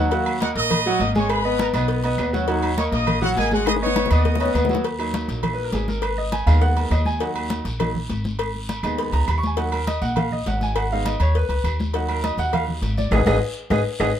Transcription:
Already playing: D#2
0.11 F#3 A#3 F#4 F#5, cowbell, high conga, low agogo, long guiro
0.26 high conga, low agogo, claves
0.40 A#3 F#4 A#4 D#5 F#5, cowbell, high conga, low agogo, short guiro
0.55 A#1 A#3 A#4 D#5 D#6, cowbell, high conga, short guiro
0.71 cowbell, high conga, low conga, low agogo, long guiro, claves
0.86 F#3 F#4 F#5, high conga
0.99 G#1 A#3 A#4 D#5, cowbell, high conga, low agogo, short guiro
1.15 G#3 G#4 C#5 G#5 C#6, high conga, short guiro
1.29 B4 B5, cowbell, high conga, low agogo, long guiro, claves
1.44 B3 B4 D#5, high conga
1.59 A#4 A#5, cowbell, high conga, low agogo, short guiro
1.73 B1 B3 B4 D#5 B5, cowbell, low agogo, short guiro, claves
1.88 cowbell, high conga, long guiro
2.03 B3 B4 D#5, cowbell, high conga, low agogo
2.18 D#2, cowbell, high conga, low timbale, low agogo, short guiro, claves
2.32 F#3 C#4 F#4 F#5, high conga, short guiro
2.48 F#3 D#4 F#4 F#5, cowbell, high conga, low agogo, long guiro
2.63 high conga, low agogo, claves
2.77 A#3 A#4 C#5 D#5 C#6, cowbell, high conga, low agogo, short guiro
2.92 A#1 A#3 A#4 D#5 D#6, cowbell, high conga, short guiro
3.07 cowbell, high conga, low conga, low agogo, long guiro, claves
3.22 F#3 F#4 F#5, high conga, low conga
3.36 G#1 A#3 G#4 A#4 D#5 G#5, cowbell, high conga, low agogo, short guiro
3.51 G#3 F#4 G#4 F#5 G#5, high conga, short guiro
3.66 D#5 D#6, cowbell, high bongo, high conga, low agogo, long guiro, claves
3.76 high bongo
3.81 B3 B4 C#5 D#5 C#6, high conga
3.86 high bongo
3.96 cowbell, high bongo, high conga, low agogo, short guiro
4.06 low bongo
4.10 D#2 B3 B4 D#5 D#6, cowbell, low agogo, short guiro, claves
4.25 cowbell, low bongo, high conga, long guiro
4.35 low bongo
4.40 B3 C#4 B4 D#5, cowbell, high conga, low agogo
4.45 low bongo
4.54 D#2 B3, cowbell, low bongo, high conga, low agogo, short guiro, claves
4.65 low bongo
4.69 F#3 F#4 F#5, high conga, short guiro
4.75 low bongo
4.84 cowbell, high conga, low agogo, long guiro
4.99 F#3 A#3 D#4, high conga, low agogo, claves
5.14 cowbell, high conga, low agogo, short guiro
5.28 A#1, cowbell, high conga, short guiro
5.43 cowbell, high conga, low conga, low agogo, long guiro, claves
5.54 B4
5.58 high conga
5.64 A#4
5.72 G#1 G#4, cowbell, high conga, low timbale, low agogo, short guiro
5.88 A#4, high conga, short guiro
6.02 B4, cowbell, high conga, low agogo, long guiro, claves
6.18 D#5, high conga
6.32 G#5, cowbell, high conga, low agogo, short guiro
6.46 D#2 G#3 B3 D#4 F5, cowbell, low agogo, short guiro, claves
6.61 F#5, cowbell, high conga, long guiro
6.76 A#4, cowbell, high conga, low agogo
6.91 D#2 D#5, cowbell, high conga, low timbale, low agogo, short guiro, claves
7.05 G#5, high conga, short guiro
7.20 F#3 A#3 D#4 F#5, cowbell, high conga, low agogo, long guiro
7.36 high conga, low agogo, claves
7.50 cowbell, high conga, low agogo, short guiro
7.65 A#1, cowbell, high conga, short guiro
7.80 F#3 A#3 D#4, cowbell, high conga, low conga, low agogo, long guiro, claves
7.95 high conga, low conga
8.09 G#1, cowbell, high conga, low agogo, short guiro
8.24 high conga, short guiro
8.39 cowbell, high conga, low agogo, long guiro, claves
8.55 high conga
8.69 cowbell, high conga, low agogo, short guiro
8.83 D#2 G#3 B3 D#4, cowbell, low agogo, short guiro, claves
8.98 B5, cowbell, high conga, long guiro
9.13 C#2 A#5, cowbell, high conga, low agogo
9.28 D#2 B5, cowbell, high conga, low agogo, short guiro, claves
9.38 C#6
9.43 G#5, high conga, short guiro
9.56 F#3 A#3 D#4 F#5, cowbell, high conga, low agogo, long guiro
9.72 A#4, high conga, low agogo, claves
9.87 D#5, cowbell, high conga, low agogo, short guiro
10.02 A#1 F#5, cowbell, high conga, short guiro
10.16 F5, cowbell, high conga, low conga, low agogo, long guiro, claves
10.31 D#5, high conga, low conga
10.46 G#1 F#5, cowbell, high conga, low timbale, low agogo, short guiro
10.61 G#5, high conga, short guiro
10.76 F#5, cowbell, high conga, low agogo, long guiro, claves
10.91 G#3 B3 D#4 F5, high conga
11.05 D#5, cowbell, high conga, low agogo, short guiro
11.20 D#2 C#5, cowbell, low agogo, short guiro, claves
11.35 B4, cowbell, high conga, long guiro
11.49 C#2, cowbell, high conga, low agogo
11.64 D#2, cowbell, high conga, low agogo, short guiro, claves
11.80 high conga, short guiro
11.94 F#3 A#3 D#4 F#5, cowbell, high conga, low agogo, long guiro
12.09 A#4, high conga, low agogo, claves
12.24 D#5, cowbell, high conga, low agogo, short guiro
12.37 D#2 F#5, cowbell, high conga, short guiro
12.53 F5, cowbell, high conga, low conga, low agogo, long guiro, claves
12.68 high conga, low conga
12.82 G#1, cowbell, high conga, low agogo, short guiro
12.97 D5, high conga, short guiro
13.11 G#1 G#4 B4 D#5, cowbell, high conga, high timbale, long guiro, claves
13.26 G#1 G#4 B4 D#5, cowbell, high conga, high timbale, long guiro, claves
13.70 G#1 G#4 B4 D#5, cowbell, high conga, high timbale, long guiro, claves
14.00 G#1 G#4 B4 D#5, cowbell, high conga, high timbale, long guiro, claves

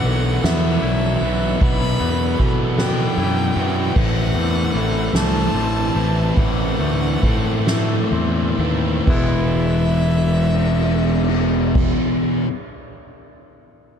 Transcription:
Already playing: B2 B3 F#5
0.03 B1 B2 E3 F#3 B3 E4 F#4 A4, ride
0.42 E2 B2 E3 F#3 B3 E4 F#4 E5, snare, ride
0.82 B1 E4, ride
1.21 B1 E3 F#3 B3 E4 F#4 B4, ride
1.59 B1 B2 E3 F#3 B3 E4 F#4 B4 B5, kick, ride
1.99 E2 F#3 B3 E4 F#4, ride
2.38 B2 E3 F#3 B3 E4 F#4 A4, kick, ride
2.77 B2 E3 F#3 B3 E4 F#4 G5, snare, ride
3.17 F#2 E4, ride
3.55 F#2 E3 F#3 B3 E4 F#4 B4, ride
3.94 A1 A2 E3 A3 C4 E4 B4 F#5, kick, crash
4.33 E2 A3 C4 E4, ride
4.73 A1 E3 A3 C4 E4 A4, ride
5.13 C2 A2 E3 A3 C4 E4 A5, snare, ride
5.54 A1 C4, ride
5.95 A1 E3 A3 C4 E4 B4, ride
6.35 A1 A2 E3 A3 C4 E4 B4 F#5, kick, ride
6.79 D2 A3 C4 E4, ride
7.22 A2 E3 A3 C4 E4 A4, kick, ride
7.66 A2 E3 A3 C4 E4, snare, ride
8.12 E2 C4, ride
8.58 D#2 A3 C4 E4 B4, ride
9.05 E1 E2 B2 E4 E5, kick, crash
9.09 E3 G#3 B3 E4
9.57 crash
9.69 ride
9.81 crash
9.93 ride
10.05 crash
10.17 ride
10.29 crash
10.41 ride
10.53 crash
10.65 ride
10.77 crash
10.90 ride
11.02 crash
11.14 ride
11.27 crash
11.75 kick, crash

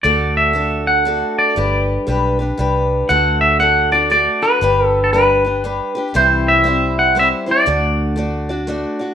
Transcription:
0.03 D2 D3 A3 D4 F#4 A4 D5
0.37 E5
0.53 A3 D4 F#4 A4
0.87 F#5
1.05 A3 D4 F#4 A4
1.39 D5
1.56 G1 G3 D4 G4 B4
2.07 B1 G3 D4 G4 B4
2.39 D4 G4 B4
2.58 C2 G3 D4 G4 B4
3.09 D2 D3 A3 D4 F#4 A4 F#5
3.41 E5
3.60 A3 D4 F#4 A4 F#5
3.92 D4 F#4 A4 D5
4.10 A3 D4 F#4 A4 D5
4.42 D4 F#4 A4 B4
4.61 G1 G3 D4 G4 B4
4.86 A4
5.04 A4
5.13 G3 D4 G4 B4
5.45 D4 G4 B4
5.64 G3 D4 G4 B4
5.95 D4 G4 B4
6.14 C2 C3 E3 G3 C4 E4 C5
6.48 E5
6.64 G3 C4 E4 C5
6.99 F#5
7.15 G3 C4 E4 C5
7.19 E5
7.46 G3 C4 E4 C5
7.51 D5
7.66 D2 D3 A3 D4 F#4 D5
8.16 A3 D4 F#4 D5
8.49 D4 F#4 D5
8.67 A3 D4 F#4 D5
8.99 D4 F#4 D5

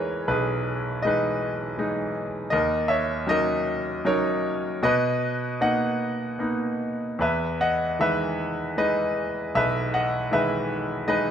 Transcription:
Already playing: E2 E3 G#3 D#4 G#4 A#4 B4 C#5 D#5 E5
0.28 B1 G#4 B4
1.02 E3 G#3 D#4 D#5
1.07 B4
1.77 E3 G#3 D#4
2.50 D#2 A#4 D#5
2.88 C#5 E5
3.27 F#3 C#4 D#4 A#4 D#5
4.05 F#3 C#4 D#4 A#4 C#5
4.83 B2 B4 D#5
5.61 A#3 B3 D#4 D#5 F#5
6.39 A#3 B3 D#4
7.19 E2 B4 E5
7.61 D#5 F#5
7.99 D#3 E3 G#3 B4 E5
8.77 E3 G#3 D#4 B4 D#5
9.55 B1 B4 E5
9.94 D#5 F#5
10.31 D#3 E3 G#3 B4 E5
11.07 E3 G#3 D#4 B4 D#5

